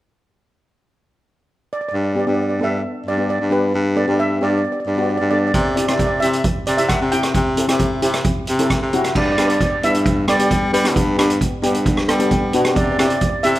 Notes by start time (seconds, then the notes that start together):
1.73 D5
1.81 D5
1.89 D5
1.94 G2 D5
2.04 D5
2.13 B3 D4 G4 D5
2.19 D5
2.27 G2 B3 D4 G4 D5
2.34 D5
2.42 D5
2.49 D5
2.60 G2 B3 D4 A4 E5
3.06 G2 D5
3.17 B3 D4 G4
3.30 D5
3.41 G2
3.50 B3 D4 G4 B4
3.74 G2
3.96 B3 D4 A4 D5
4.07 G2 B3 D4 G4
4.20 E5
4.40 G2 B3 D4 G4 D5
4.50 D5
4.57 D5
4.65 D5
4.72 D5
4.80 D5
4.87 G2 D5
4.95 B3 D4 F#4 D5
5.03 D5
5.10 D5
5.18 G2 D5
5.31 B3 D4 A4 D5
5.38 D5
5.47 D5
5.54 C3 D5, kick, closed hi-hat
5.61 D5
5.69 D5
5.76 C4 E4 G4 D5, closed hi-hat
5.85 C3 C4 D5, cross-stick, closed hi-hat
5.89 E4 G4 D5
5.99 D5, kick, closed hi-hat
6.07 D5
6.20 C3 C4 E4 G4 E5, closed hi-hat
6.33 closed hi-hat
6.44 kick, closed hi-hat
6.67 C3 D5, closed hi-hat
6.77 C4 E4 G4 E5, closed hi-hat
6.89 F#5, kick, cross-stick, closed hi-hat
7.01 C3
7.12 C4 E4 G4 G5, closed hi-hat
7.23 cross-stick, closed hi-hat
7.35 C3, kick, closed hi-hat
7.57 C4 E4 A4, closed hi-hat
7.68 C3 C4 E4 G4, cross-stick, closed hi-hat
7.79 kick, closed hi-hat
8.02 C3 C4 E4 G4, closed hi-hat
8.14 cross-stick, closed hi-hat
8.24 kick, closed hi-hat
8.47 C3, closed hi-hat
8.59 C4 E4 A4, closed hi-hat
8.70 kick, cross-stick, closed hi-hat
8.82 C3
8.93 C4 E4 F#4, closed hi-hat
9.04 cross-stick, closed hi-hat
9.15 G2 D5, kick, crash
9.25 D5
9.32 D5
9.38 G2 B3 D4 G4 D5, cross-stick, closed hi-hat
9.48 D5, closed hi-hat
9.54 D5
9.61 D5, kick, closed hi-hat
9.70 D5
9.83 G2 B3 D4 E4 E5, closed hi-hat
9.95 closed hi-hat
10.06 kick, closed hi-hat
10.28 G3 B3 D4 A4 D5, cross-stick, closed hi-hat
10.39 B3 D4 G4, closed hi-hat
10.51 kick, closed hi-hat
10.73 G3 B3 D4 G4 B4, closed hi-hat
10.84 B3 D4 G4, cross-stick, closed hi-hat
10.96 G2, kick, closed hi-hat
11.17 G2 B3 D4 G4, cross-stick, closed hi-hat
11.30 closed hi-hat
11.41 kick, closed hi-hat
11.62 G2 B3 D4 G4, closed hi-hat
11.74 closed hi-hat
11.86 kick, closed hi-hat
11.97 cross-stick
12.08 G3 B3 D4 A4, cross-stick, closed hi-hat
12.19 B3 D4 G4, closed hi-hat
12.31 kick, closed hi-hat
12.53 B2 B3 D4 F#4, closed hi-hat
12.65 B3 D4 G4, cross-stick, closed hi-hat
12.76 C3 D5, kick, closed hi-hat
12.84 D5
12.92 D5
12.98 C3 C4 E4 G4 D5, cross-stick, closed hi-hat
13.08 D5, closed hi-hat
13.15 D5
13.21 D5, kick, closed hi-hat
13.29 D5
13.43 C3 C4 E4 G4 E5, closed hi-hat
13.55 closed hi-hat